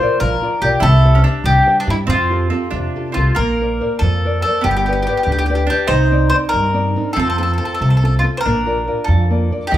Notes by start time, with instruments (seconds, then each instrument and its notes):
Already playing: mandolin F4 C5
0.01 nylon-string guitar F4 A#4 D5
0.20 upright bass A#1, nylon-string guitar F3, mandolin A#4
0.42 nylon-string guitar F4 A#4 D5
0.62 upright bass B1, nylon-string guitar F4 A#4 D5, mandolin G4
0.80 upright bass C2, nylon-string guitar C4, mandolin E4 A4
1.05 nylon-string guitar G4 C5 E5
1.15 mandolin C#4
1.24 mandolin D4, nylon-string guitar G4 C5 E5
1.44 upright bass C2, nylon-string guitar G3, mandolin G4
1.66 nylon-string guitar G4 C5 E5
1.80 mandolin D4
1.87 upright bass G2, mandolin E4, nylon-string guitar G4 C5 E5
2.07 upright bass F2, nylon-string guitar F3, mandolin C4 F4
2.30 nylon-string guitar F4 G4 A4
2.50 mandolin C4, nylon-string guitar F4 G4 A4
2.71 upright bass F2, nylon-string guitar C3, mandolin D4
2.96 nylon-string guitar F4 G4 A4
3.12 upright bass C2, mandolin C4 F4
3.18 nylon-string guitar F4 G4 A4
3.35 upright bass A#1, mandolin A#3 A#4
3.39 nylon-string guitar A#3
3.61 nylon-string guitar A#4 C5 D5
3.81 nylon-string guitar A#4 C5 D5
3.99 upright bass F2, mandolin A4
4.03 nylon-string guitar F3
4.24 nylon-string guitar A#4 C5 D5
4.42 mandolin A4, nylon-string guitar A#4 C5 D5
4.61 upright bass G1, mandolin B3 G4
4.66 nylon-string guitar G3
4.71 mandolin G4
4.77 mandolin G4
4.86 mandolin G4, nylon-string guitar G4 B4 D5
4.93 mandolin G4
5.02 mandolin G4
5.07 mandolin G4, nylon-string guitar G4 B4 D5
5.17 mandolin G4
5.23 upright bass D2, mandolin G4
5.28 nylon-string guitar D3, mandolin G4
5.38 mandolin G4
5.46 mandolin G4, nylon-string guitar B4 D5
5.50 nylon-string guitar G4
5.55 mandolin G4
5.67 mandolin D4 G4, nylon-string guitar G4 B4
5.71 nylon-string guitar D5
5.87 upright bass C2, nylon-string guitar C3, mandolin D#4 C5
6.11 nylon-string guitar C4 D#4 D5
6.30 nylon-string guitar C4 D#4, mandolin C5
6.34 nylon-string guitar D5
6.49 mandolin A#4
6.54 upright bass G2, nylon-string guitar G3
6.74 nylon-string guitar C4 D#4 D5
6.96 nylon-string guitar C4 D4 D#4
7.13 upright bass F2, nylon-string guitar F3, mandolin C4 A4
7.20 mandolin A4
7.30 mandolin A4
7.38 nylon-string guitar C4 F4 A4, mandolin A4
7.43 mandolin A4
7.53 mandolin A4
7.58 nylon-string guitar C4 F4 A4, mandolin A4
7.65 mandolin A4
7.75 mandolin A4
7.81 upright bass C2, nylon-string guitar C3, mandolin A4
7.90 mandolin A4
7.97 mandolin A4
8.03 nylon-string guitar C4 F4 A4, mandolin A4
8.19 mandolin F4
8.23 nylon-string guitar C4 F4 A4
8.37 mandolin A#4 C5
8.45 upright bass A#1, nylon-string guitar A#3, mandolin D4
8.66 nylon-string guitar F4 A#4 D5
8.87 nylon-string guitar F4 A#4 D5
9.04 upright bass F2, mandolin A4
9.09 nylon-string guitar F3
9.30 nylon-string guitar A#3 F4 D5
9.51 nylon-string guitar F4 A#4 D5
9.67 mandolin G4
9.71 upright bass D#2, nylon-string guitar D#3, mandolin D#4 G4